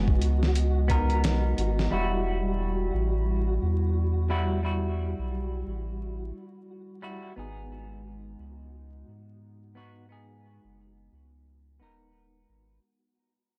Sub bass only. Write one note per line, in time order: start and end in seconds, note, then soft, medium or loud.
0.00 0.18 F#1 medium
0.21 1.25 C#2 medium
1.24 1.54 B1 medium
1.58 1.88 G#1 medium
1.92 2.91 E1 medium
2.94 3.59 A1 medium
3.62 5.15 E2 medium
5.19 5.64 B1 medium
5.67 6.32 A1 medium
7.37 8.36 G#1 medium
8.39 9.05 C#2 medium
9.08 10.60 G#2 medium
10.64 11.09 F#1 medium
11.12 11.82 C#2 medium
11.80 12.46 D#1 medium
12.49 12.79 G#1 medium